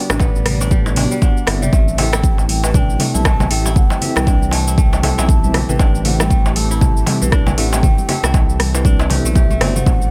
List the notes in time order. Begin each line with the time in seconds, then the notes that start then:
Already playing: D3 G3 B3 D4 F#4 G4 D5
0.10 A1 D3, cross-stick, darbuka ka, shaker
0.20 B3, kick, darbuka tek, shaker
0.36 shaker
0.46 G3, cross-stick, open hi-hat, mid tom
0.60 D4, darbuka tek, shaker
0.71 G3, kick, shaker
0.86 darbuka ka, darbuka tek, shaker
0.96 B3 D4 F#4 G4 D5, open hi-hat, mid tom, darbuka ka
1.11 G3, shaker
1.22 D4 F#5, kick, darbuka tek, shaker
1.37 shaker
1.47 G1 C4 E4 G4 A4 E5, cross-stick, open hi-hat, darbuka tek
1.62 G3 E5, mid tom, shaker
1.73 A1 E3 A3 C4 G4, kick, darbuka tek, shaker
1.88 muted conga, shaker
1.98 C4 E4 G4 A4 E5 G5, open hi-hat, darbuka tek, low conga
2.13 E4, cross-stick, darbuka ka, muted conga, high conga, shaker
2.24 kick, shaker
2.38 darbuka tek, shaker
2.49 G5, open hi-hat, muted conga
2.64 E3, darbuka tek, shaker
2.74 D4 A5, kick, mid tom, muted conga, high conga, shaker
2.79 G5
2.90 shaker
2.99 A3 C4 E4 G4 A4 E5, open hi-hat, mid tom, muted conga, high conga, darbuka tek
3.14 B1 E4 A5, high conga, shaker
3.25 A3, kick, cross-stick, darbuka tek, shaker
3.40 muted conga, darbuka ka, high conga, low conga, shaker
3.51 A1 C4 E4 G4 A4 E5 G5, open hi-hat
3.65 E4, muted conga, darbuka tek, shaker
3.76 G5, kick, low conga, shaker
3.90 muted conga, darbuka tek, shaker
4.01 C4 E4 G4 A4 E5, open hi-hat, low conga
4.16 C2 E3, cross-stick, darbuka ka, muted conga, high conga, shaker
4.27 D4, kick, darbuka tek, shaker
4.43 shaker
4.51 A3 A5, open hi-hat, muted conga, darbuka tek
4.67 E4, shaker
4.78 A3 A5, kick, muted conga, high conga, shaker
4.82 G5
4.93 darbuka ka, darbuka tek, shaker
5.03 C4 E4 G4 A4 E5, open hi-hat, mid tom, muted conga, darbuka ka, high conga
5.18 B1 E4, darbuka tek, shaker
5.29 A5, kick, shaker
5.44 C4 E4 G4 A4 E5, muted conga, high conga, shaker
5.54 C4 E4 G4 A4 E5, cross-stick, open hi-hat, darbuka tek, low conga
5.69 A1 E3 G5, mid tom, muted conga, shaker
5.79 A1 D4, kick, darbuka tek, shaker
5.95 muted conga, shaker
6.05 A3 C4 E4 G4 A4 E5 F#5, open hi-hat, low conga
6.16 E4 G5, cross-stick, darbuka ka, muted conga, darbuka tek, shaker
6.21 high conga
6.30 A3, kick, shaker
6.46 darbuka tek, shaker
6.56 A4 A5, open hi-hat, muted conga
6.71 E4 B5, shaker
6.75 A5
6.81 kick, mid tom, muted conga, high conga, darbuka tek, shaker
6.97 shaker
7.07 C4 E4 G4 A4 E5, open hi-hat, mid tom, muted conga, darbuka tek, high conga
7.21 B1 E3, high conga, shaker
7.32 D4, kick, cross-stick, shaker
7.47 darbuka ka, muted conga, darbuka tek, high conga, low conga, shaker
7.58 A1 A3 C4 E4 G4 A4 E5 F#5, open hi-hat
7.73 E4 G5, muted conga, darbuka tek, shaker
7.83 A3, kick, low conga, shaker
7.98 muted conga, shaker
8.08 C4 E4 G4 A4 E5, open hi-hat, darbuka tek, low conga
8.23 C2 E4, cross-stick, muted conga, darbuka ka, high conga, shaker
8.34 kick, darbuka tek, shaker
8.50 shaker
8.60 cross-stick, open hi-hat, muted conga
8.75 E3, darbuka tek, shaker
8.84 D4, kick, muted conga, high conga, shaker
9.00 darbuka ka, darbuka tek, shaker
9.10 C4 E4 G4 A4 E5, open hi-hat, mid tom, darbuka ka, muted conga, high conga
9.25 B1 A3, shaker
9.35 G4 E5, kick, darbuka tek, shaker
9.50 A3, muted conga, high conga, shaker
9.61 G1 B3 C4 D4 F#4 G4 D5, cross-stick, open hi-hat, darbuka tek, low conga
9.75 A3 F#5, mid tom, muted conga, shaker
9.86 A1 D3 G3 B3 D5, kick, darbuka tek, shaker
10.01 muted conga, shaker